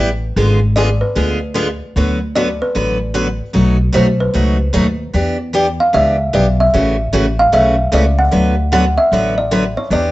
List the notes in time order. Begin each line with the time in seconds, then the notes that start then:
Already playing: A1
0.36 G#1 D3 G#3 B3 F4 G#4
0.76 D3 G#3 B3 F4 G#4 D5
1.01 B4
1.15 D2 D3 G#3 B3 F4 G#4
1.54 D3 G#3 B3 F4 G#4
1.96 D2 D3 F#3 B3 F#4 B4
2.35 D3 F#3 B3 F#4 B4 D5
2.62 B4
2.75 A1 D3 F#3 B3 F#4 B4
3.14 D3 F#3 B3 F#4 B4
3.53 B1 B2 F#3 A3 D#4 F#4
3.93 B1 B2 F#3 A3 D#4 F#4 C5
4.20 B4
4.34 C#2 B2 F#3 A3 D#4 F#4
4.73 D#2 B2 F#3 A3 D#4 F#4
5.13 E2 E3 B3 D4 G4
5.53 E3 B3 D4 G4
5.80 F5
5.93 C#2 E3 B3 D4 G4 E5
6.33 B1 E3 B3 D4 G4 D5
6.60 E5
6.74 A1 C#3 E3 A3 C#4 F#4
7.13 A1 C#3 E3 A3 C#4 F#4
7.39 F5
7.52 B1 C#3 E3 A3 C#4 F#4 E5
7.92 C#2 C#3 E3 A3 C#4 F#4 D5
8.19 F#5
8.31 D2 D3 F#3 B3 F#4 B4
8.72 D3 F#3 B3 F#4 B4 F#5
8.98 E5
9.12 A1 D3 F#3 B3 F#4 B4
9.38 D5
9.51 D3 F#3 B3 F#4 B4
9.77 C#5
9.90 E2 E3 B3 D4 G4 D5